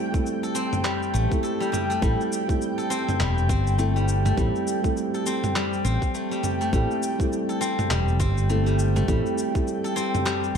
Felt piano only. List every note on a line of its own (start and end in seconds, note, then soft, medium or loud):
0.00 0.12 G3 loud
0.00 0.13 A3 medium
0.00 0.14 C4 medium
0.00 0.14 E4 medium
0.00 0.16 A4 loud
0.12 1.27 G3 medium
0.12 1.28 A3 medium
0.12 1.28 C4 medium
0.12 1.28 E4 medium
0.16 1.29 A4 medium
1.30 1.99 G3 medium
1.30 1.99 A3 medium
1.30 2.00 C4 medium
1.30 2.00 E4 medium
1.30 2.01 A4 medium
2.01 2.44 G3 medium
2.01 2.45 A3 medium
2.01 2.45 C4 medium
2.01 2.45 E4 medium
2.01 2.45 A4 loud
2.47 3.75 G3 medium
2.47 3.76 A3 medium
2.47 3.76 C4 medium
2.47 3.76 E4 medium
2.51 3.77 A4 medium
3.77 4.34 G3 medium
3.77 4.34 A3 medium
3.77 4.35 C4 medium
3.77 4.35 E4 medium
3.77 4.35 A4 medium
4.36 4.49 G3 medium
4.36 4.49 A3 medium
4.36 4.50 C4 medium
4.36 4.50 E4 medium
4.36 4.50 A4 loud
4.81 6.69 G3 medium
4.81 6.69 A3 medium
4.81 6.70 C4 medium
4.81 6.70 E4 medium
4.85 6.71 A4 medium
6.73 7.15 G3 medium
6.73 7.16 A3 medium
6.73 7.16 C4 medium
6.73 7.16 E4 medium
6.73 7.16 A4 loud
7.18 8.46 G3 medium
7.18 8.46 A3 medium
7.18 8.47 C4 medium
7.18 8.47 E4 medium
7.23 8.48 A4 medium
8.49 9.05 G3 medium
8.49 9.05 A3 medium
8.49 9.06 C4 medium
8.49 9.06 E4 medium
8.49 9.06 A4 medium
9.07 9.20 G3 loud
9.07 9.20 A3 medium
9.07 9.20 C4 medium
9.07 9.21 E4 medium
9.07 9.21 A4 loud
9.53 10.57 G3 medium
9.53 10.57 A3 medium
9.53 10.57 C4 medium
9.53 10.57 E4 medium
9.57 10.57 A4 medium